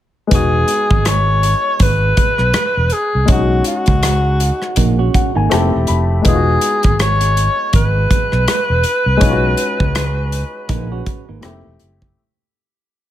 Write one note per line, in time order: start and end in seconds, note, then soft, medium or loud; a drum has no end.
0.27 3.23 G#3 medium
0.27 3.24 B3 medium
0.27 closed hi-hat medium
0.31 0.63 E1 loud
0.31 3.25 D#4 medium
0.31 3.26 F#4 medium
0.31 1.10 G#4 medium
0.31 kick medium
0.68 closed hi-hat medium
0.91 1.53 G#1 medium
0.91 kick medium
1.05 1.84 C#5 medium
1.05 cross-stick medium
1.05 closed hi-hat medium
1.43 closed hi-hat medium
1.80 2.11 G#1 medium
1.80 2.94 B4 medium
1.80 kick medium
1.80 closed hi-hat medium
2.17 kick medium
2.17 closed hi-hat medium
2.38 2.52 B1 medium
2.38 cross-stick soft
2.54 muted fingered electric bass stroke soft
2.54 cross-stick medium
2.54 closed hi-hat medium
2.77 2.90 E1 medium
2.90 3.29 G#4 medium
2.90 closed hi-hat soft
3.15 3.27 C2 medium
3.26 3.60 B1 medium
3.26 5.46 G#3 medium
3.26 5.47 C#4 soft
3.26 kick medium
3.26 closed hi-hat medium
3.30 5.48 D#4 medium
3.30 3.64 F#4 medium
3.30 5.49 F#4 medium
3.64 5.11 F#4 medium
3.64 closed hi-hat medium
3.86 4.50 C#2 medium
3.86 kick medium
3.86 closed hi-hat soft
4.03 cross-stick loud
4.03 closed hi-hat medium
4.40 closed hi-hat medium
4.62 cross-stick soft
4.76 5.08 A#1 medium
4.76 4.98 A#3 medium
4.76 4.98 D#4 medium
4.76 kick medium
4.76 closed hi-hat medium
4.99 5.34 C#4 medium
4.99 5.34 F#4 medium
5.14 5.34 F#5 medium
5.14 kick medium
5.14 closed hi-hat medium
5.35 5.49 G#1 medium
5.35 5.71 A#3 medium
5.35 5.71 D#4 medium
5.35 5.51 G#5 medium
5.50 5.70 F1 medium
5.50 6.25 A3 medium
5.50 6.25 C4 medium
5.50 6.26 E4 medium
5.50 6.26 G4 medium
5.50 5.86 A5 medium
5.50 cross-stick loud
5.50 closed hi-hat medium
5.75 5.87 E1 medium
5.87 6.20 F1 medium
5.87 6.23 B5 medium
5.87 closed hi-hat soft
6.22 6.57 E1 medium
6.22 9.16 G#3 medium
6.22 9.17 B3 medium
6.22 kick medium
6.22 closed hi-hat medium
6.26 9.18 D#4 medium
6.26 6.35 F4 medium
6.26 6.97 G#4 medium
6.35 9.23 F#4 medium
6.61 closed hi-hat medium
6.83 7.47 G#1 medium
6.83 kick medium
6.83 closed hi-hat soft
6.99 7.71 C#5 loud
6.99 cross-stick loud
6.99 closed hi-hat medium
7.21 closed hi-hat medium
7.37 closed hi-hat medium
7.73 8.05 G#1 medium
7.73 11.41 B4 medium
7.73 kick medium
7.73 closed hi-hat medium
8.11 kick medium
8.11 closed hi-hat medium
8.32 8.46 B1 medium
8.32 cross-stick soft
8.48 muted fingered electric bass stroke soft
8.48 cross-stick medium
8.48 closed hi-hat medium
8.70 8.83 E1 medium
8.84 closed hi-hat medium
9.06 9.19 C2 medium
9.17 11.37 G#3 medium
9.17 11.39 C#4 medium
9.17 closed hi-hat medium
9.21 9.53 B1 medium
9.21 11.40 D#4 medium
9.21 9.31 F4 medium
9.21 kick medium
9.31 11.44 F#4 medium
9.57 closed hi-hat medium
9.80 10.42 C#2 medium
9.80 kick medium
9.95 cross-stick loud
9.95 closed hi-hat medium
10.32 closed hi-hat medium
10.69 11.01 A#1 medium
10.69 10.91 A#3 medium
10.69 10.90 D#4 medium
10.69 kick medium
10.69 closed hi-hat medium
10.92 11.27 C#4 medium
10.92 11.27 F#4 medium
11.06 kick medium
11.06 closed hi-hat medium
11.29 11.42 G#1 medium
11.29 11.64 A#3 soft
11.29 11.63 D#4 medium
11.41 11.62 F1 medium
11.41 11.50 G3 medium
11.41 12.17 C4 medium
11.41 12.18 E4 medium
11.41 12.18 G4 medium
11.41 cross-stick medium
11.41 closed hi-hat medium
11.48 12.20 A3 medium
11.67 11.79 E1 medium
11.80 12.12 F#1 medium
11.80 closed hi-hat soft
12.02 kick medium